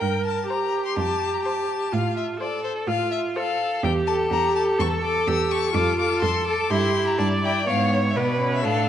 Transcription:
Already playing: A#4
0.00 G2 G5
0.25 A5
0.49 G4 C5 A#5
0.85 C6
0.97 F2 A5
1.34 A#5
1.45 C5 A5
1.93 A2 F4 F5
2.17 E5
2.40 A4 C5 D5
2.64 C5
2.87 A2 F4 F5
3.11 E5
3.36 A4 C5 F5
3.83 E2 G4 G5
4.07 A4 A5
4.31 E2 G4 A#5
4.55 A4 A5
4.79 E2 A4 C#6
5.03 A4 D6
5.27 E2 G4 E6
5.51 A4 C#6
5.74 F2 F4 A4 D6
5.98 A4 D6
6.22 F2 A4 C6
6.46 A4 D6
6.70 G2 E4 G4 C6
6.96 E4
7.07 A#5
7.18 G2 D5 A5
7.44 E4 G5
7.67 G#2 B3 C#5 F5
7.93 C#5
8.10 E5
8.16 B2 B3 B4 D5
8.40 C#4
8.53 E5
8.64 A2 D4 A4 F5

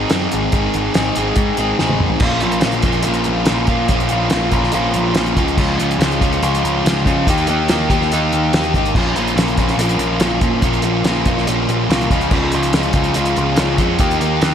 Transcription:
Already playing: G#2 G#3 C4 D#4 G#4
0.10 F#2 G#2 D#3 G#3 C4 D#4 G#4, snare, closed hi-hat
0.32 G#1, closed hi-hat
0.52 G#1 G#2 D#3 G#3 C4 D#4 G#4, kick, closed hi-hat
0.74 G#1, closed hi-hat
0.94 G#1 G#3 C4 D#4 G#4, snare, closed hi-hat
1.15 G#1 G#3 C4 D#4 G#4, closed hi-hat
1.36 G#2, kick, closed hi-hat
1.57 G#1 G#3 C4 D#4 G#4, closed hi-hat
1.78 A1 G#2 D#3 G#3 C4 D#4 G#4, snare
1.89 high tom
2.00 mid tom
2.10 floor tom
2.20 A#1 A#2 F3 A#3 C#4 F4, kick, crash
2.40 A#1 C#4 F4, closed hi-hat
2.45 A#3
2.52 closed hi-hat
2.61 A#1 F3 A#3, snare, closed hi-hat
2.65 C#4 F4
2.72 closed hi-hat
2.82 A#1 C#4 F4, kick, closed hi-hat
2.86 A#3
2.92 closed hi-hat
3.03 A#2 F3 A#3, closed hi-hat
3.07 A#1 C#4 F4
3.14 closed hi-hat
3.24 closed hi-hat
3.28 A#1
3.46 F3 A#3 C#4, snare, closed hi-hat
3.50 A#1 F4
3.67 A#2 A#3 C#4 F4, kick, closed hi-hat
3.88 A#1 A#2 F3 A#3 C#4 F4, kick, closed hi-hat
4.00 closed hi-hat
4.09 A#1 C#4 F4, closed hi-hat
4.13 A#3
4.30 A#1 F3 A#3 C#4, snare, closed hi-hat
4.34 F4
4.52 A#1 A#3 C#4 F4, kick, closed hi-hat
4.63 snare
4.72 A#1 A#2 F3 A#3 C#4 F4, closed hi-hat
4.94 A#1, closed hi-hat
5.15 A#1 F3 A#3 C#4 F4, snare, closed hi-hat
5.26 closed hi-hat
5.37 C#2 C#3 F3 G#3 C#4 F4, kick, closed hi-hat
5.48 closed hi-hat
5.58 C#2 C#3 F3 G#3 C#4 F4, kick, crash
5.79 C#2 G#3 C#4 F4, closed hi-hat
5.91 closed hi-hat
5.99 C#2 F3 G#3 C#4 F4, snare, closed hi-hat
6.11 closed hi-hat
6.21 C#2 G#3 C#4 F4, kick, closed hi-hat
6.32 closed hi-hat
6.42 C#2 C#3 F3 G#3 C#4 F4, closed hi-hat
6.55 closed hi-hat
6.64 C#2, closed hi-hat
6.84 C#2 F3 G#3 C#4 F4, snare, closed hi-hat
7.06 C#3 G#3 C#4 F4, kick, closed hi-hat
7.27 D#2 D#3 A#3 D#4 G4, kick, closed hi-hat
7.38 closed hi-hat
7.47 D#2 A#3 D#4 G4, closed hi-hat
7.68 D#2 D#3 A#3 D#4 G4, snare, closed hi-hat
7.90 D#2 A#3 D#4 G4, kick, closed hi-hat
8.02 snare
8.12 D#2 D#3 A#3 D#4 G4, closed hi-hat
8.32 D#2, closed hi-hat
8.53 D#2 D#3 A#3 D#4 G4, snare, closed hi-hat
8.64 closed hi-hat
8.74 G#1 A#3 D#4 G4, kick, closed hi-hat
8.85 closed hi-hat
8.95 A#1 A#2 F3 A#3 C#4 F4, kick, crash
9.15 A#1 A#3 C#4 F4, closed hi-hat
9.27 closed hi-hat
9.36 A#1 F3 A#3 C#4 F4, snare, closed hi-hat
9.48 closed hi-hat
9.57 A#1 A#3 C#4 F4, kick, closed hi-hat
9.69 snare, closed hi-hat
9.78 A#1 A#2 F3 A#3 C#4 F4, closed hi-hat
9.89 closed hi-hat
9.98 A#1, closed hi-hat
10.20 A#1 F3 A#3 C#4 F4, snare, closed hi-hat
10.41 A#2 A#3 C#4 F4, kick, closed hi-hat
10.62 A#1 A#2 F3 A#3 C#4 F4, kick, closed hi-hat
10.73 closed hi-hat
10.82 A#1 F4, closed hi-hat
10.86 A#3 C#4
11.04 A#1 F3 A#3 C#4 F4, snare, closed hi-hat
11.25 A#1 A#3 C#4 F4, kick, closed hi-hat
11.38 snare
11.47 A#1 A#2 F3 A#3 C#4 F4, closed hi-hat
11.68 A#1, closed hi-hat
11.89 C2 F3 A#3 C#4 F4, snare, closed hi-hat
12.01 closed hi-hat
12.10 C#2 C#3 F3 G#3 C#4 F4, kick, closed hi-hat
12.21 closed hi-hat
12.31 C#2 C#3 F3 G#3 C#4 F4, kick, crash
12.52 C#2 G#3 C#4 F4, closed hi-hat
12.63 closed hi-hat
12.73 C#2 F3 G#3 C#4 F4, snare, closed hi-hat
12.83 closed hi-hat
12.93 C#2 C#4 F4, kick, closed hi-hat
12.97 G#3
13.04 closed hi-hat
13.14 C#2 C#3 F3 G#3 C#4 F4, closed hi-hat
13.25 closed hi-hat
13.36 C#2, closed hi-hat
13.56 C#2 F3 G#3 C#4 F4, snare, closed hi-hat
13.78 F2 G#3 C#4 F4, kick, closed hi-hat
13.98 D#2 D#3 A#3 D#4 G4, kick, closed hi-hat
14.11 closed hi-hat
14.20 D#2 A#3 D#4 G4, closed hi-hat
14.41 D#2 D#3 A#3 D#4 G4, snare, closed hi-hat

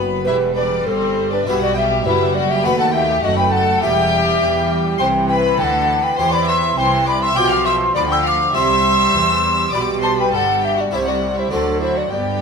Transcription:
Already playing: F#1 F#2 B3 G4 B4 B5
0.25 E1 E2 G3 E4 B4 E5
0.56 D4 B4 D5
0.86 G1 G2 C4 A4 C5
1.32 D4 B4 D5
1.46 B1 B2 G3 B3 E4 G4 B4 E5
1.60 F#4 D5 F#5
1.74 G4 E5 G5
2.03 F#1 F#2 G3 B4 E5
2.08 E4
2.34 F#4 D5 F#5
2.50 G4 E5 G5
2.64 D#2 A3 B3 F#4 A4 B4 F#5 B5
2.79 A4 F#5 A5
2.94 G4 E5 G5
3.23 F#1 F#2 A3 F#4 D#5 F#5
3.38 B4 G5 B5
3.52 A4 F#5 A5
3.82 E1 E2 G3 B3 E4 G4 E5 G5
4.41 E2 E3
4.99 C2 C3 E3 C5 G5 C6
5.28 B4 G5 B5
5.57 D2 D3 A4 G5 A5
5.63 F#5
6.02 B4 G5 B5
6.17 E2 E3 C4 E4 G4 C5 G5 C6
6.31 D5 B5 D6
6.46 E5 C6 E6
6.77 C2 C3 E3 C5 G5 C6
7.07 D5 B5 D6
7.22 E5 C6 E6
7.35 B1 B2 F3 D4 F4 G4 G5 D6 G6
7.50 F5 D6 F6
7.65 E5 C6 E6
7.94 D2 D3 F3 D5 B5 D6
8.08 G5 E6
8.12 G6
8.23 F5
8.27 D6 F6
8.53 C2 C3 G3 C4 E4 G4 E5 C6 E6
9.14 E2 E3
9.72 B1 B2 G3 D4 G4 D5 B5 D6
10.01 C5 A5 C6
10.16 B4 G5 B5
10.32 G1 G2 A4 F#5 A5
10.61 G4 E5 G5
10.75 F#4 F#5
10.81 D5
10.91 C2 C3 G3 A3 E4 G4 E5
10.95 C5
11.06 F#4 D5 F#5
11.37 E4 C5 E5
11.50 D2 D3 F#3 A3 C4 D4 F#4 A4 D5
11.81 E4 C5 E5
11.96 F#4 D5 F#5
12.10 G1 G2 B3 G4 D5 G5

